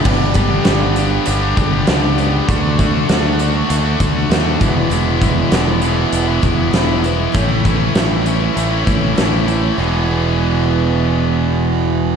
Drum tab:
CC |x-------|--------|--------|--------|
HH |-xxxxxxx|xxxxxxxx|xxxxxxxx|xxxxxxxx|
SD |--o---o-|--o---o-|--o---o-|--o---o-|
BD |oo---o--|oo---o-o|-o---o--|oo---o--|

CC |--------|
HH |--------|
SD |--------|
BD |--------|